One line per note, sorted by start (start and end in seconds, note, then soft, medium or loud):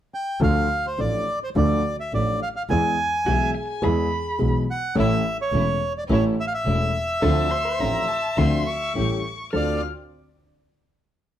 0.14 0.40 G5 medium
0.40 0.65 D2 medium
0.40 0.65 D3 medium
0.40 0.65 F3 medium
0.40 0.65 A3 medium
0.40 0.65 D4 medium
0.40 0.65 A4 medium
0.40 0.86 F5 medium
0.87 1.00 C5 medium
0.98 1.22 A1 soft
0.98 1.22 A1 medium
0.98 1.22 A2 soft
0.98 1.22 F3 soft
0.98 1.22 A3 soft
0.98 1.22 D4 soft
0.98 1.22 A4 soft
0.98 1.39 D5 medium
1.44 1.50 C5 medium
1.55 1.79 D2 medium
1.55 1.80 D2 medium
1.55 1.80 D3 medium
1.55 1.79 F3 medium
1.55 1.80 A3 soft
1.55 1.80 D4 medium
1.55 1.80 A4 medium
1.55 1.96 D5 medium
2.00 2.13 E5 medium
2.13 2.37 A1 medium
2.13 2.37 A1 soft
2.13 2.37 A2 soft
2.13 2.37 F3 soft
2.13 2.37 A3 soft
2.13 2.37 D4 soft
2.13 2.37 A4 soft
2.13 2.40 D5 medium
2.42 2.49 F5 medium
2.56 2.63 F5 medium
2.69 2.93 E2 medium
2.69 2.94 E2 medium
2.69 2.94 E3 medium
2.69 2.94 G#3 medium
2.69 2.94 B3 medium
2.69 2.94 G#4 medium
2.69 3.51 G#5 medium
3.26 3.50 B1 medium
3.26 3.50 B1 soft
3.26 3.50 B2 soft
3.26 3.50 E3 soft
3.26 3.50 G#3 soft
3.26 3.50 B3 soft
3.26 3.83 G#4 medium
3.26 3.50 G#4 soft
3.26 3.56 E5 medium
3.54 3.67 G#5 medium
3.68 3.84 G#5 medium
3.82 4.06 E2 medium
3.82 4.06 E3 medium
3.82 4.06 G#3 medium
3.82 4.06 B3 soft
3.82 4.06 G#4 medium
3.82 4.50 G#4 medium
3.82 4.54 B5 medium
4.39 4.63 B1 soft
4.39 4.63 B1 medium
4.39 4.63 B2 soft
4.39 4.63 E3 soft
4.39 4.63 G#3 soft
4.39 4.63 B3 soft
4.39 4.63 G#4 soft
4.71 4.96 F#5 medium
4.95 5.19 A1 medium
4.95 5.20 A1 medium
4.95 5.20 A2 medium
4.95 5.19 E3 medium
4.95 5.20 A3 medium
4.95 5.20 C#4 medium
4.95 5.20 E4 medium
4.95 5.20 A4 medium
4.99 5.37 E5 medium
5.42 5.93 C#5 medium
5.52 5.76 E1 soft
5.52 5.77 E1 medium
5.52 5.76 E2 soft
5.52 5.76 E3 soft
5.52 5.76 A3 soft
5.52 5.77 A3 medium
5.52 5.76 C#4 soft
5.52 5.77 C#4 soft
5.52 5.77 E4 medium
5.52 5.77 A4 soft
5.98 6.04 D5 medium
6.09 6.33 A1 medium
6.09 6.33 A2 medium
6.09 6.33 E3 medium
6.09 6.33 A3 medium
6.09 6.33 C#4 medium
6.09 6.33 E4 medium
6.09 6.34 A4 medium
6.09 6.24 C#5 medium
6.40 6.45 E5 medium
6.47 6.53 F5 medium
6.54 8.93 E5 medium
6.66 6.90 E1 medium
6.66 6.90 E1 soft
6.66 6.90 E2 soft
6.66 6.90 E3 soft
6.66 6.90 A3 soft
6.66 6.90 C#4 soft
6.66 6.90 E4 soft
6.66 6.90 A4 soft
7.22 7.46 D2 medium
7.22 7.47 D2 medium
7.22 7.46 D3 medium
7.22 7.46 F3 medium
7.22 7.47 C4 medium
7.22 7.47 D4 medium
7.22 7.47 F4 medium
7.22 7.46 A4 medium
7.22 7.52 A4 medium
7.22 7.52 A5 medium
7.50 7.64 C5 medium
7.50 7.81 C6 medium
7.65 8.76 C5 medium
7.79 8.04 A1 soft
7.79 8.04 A1 medium
7.79 8.04 A2 soft
7.79 8.04 F3 soft
7.79 8.04 C4 medium
7.79 8.04 C4 soft
7.79 8.04 D4 soft
7.79 8.04 F4 soft
7.79 8.04 A4 soft
7.79 8.09 A#5 medium
8.08 8.39 A5 medium
8.37 8.62 D2 medium
8.37 8.62 D3 medium
8.37 8.62 F3 medium
8.37 8.62 C4 medium
8.37 8.62 D4 medium
8.37 8.62 F4 medium
8.37 8.62 A4 medium
8.37 8.65 C6 medium
8.66 9.49 C#6 medium
8.95 9.20 A1 soft
8.95 9.20 A1 medium
8.95 9.20 A2 soft
8.95 9.20 G3 soft
8.95 9.20 A3 soft
8.95 9.20 C#4 soft
8.95 9.20 E4 soft
8.95 9.20 G4 soft
8.95 9.20 A4 soft
9.53 9.78 D2 soft
9.53 9.78 C4 soft
9.53 9.78 D4 soft
9.53 9.78 F4 soft
9.53 9.78 F4 medium
9.53 9.80 A4 medium
9.53 9.77 C5 soft
9.53 9.82 D5 medium
9.53 9.80 F6 medium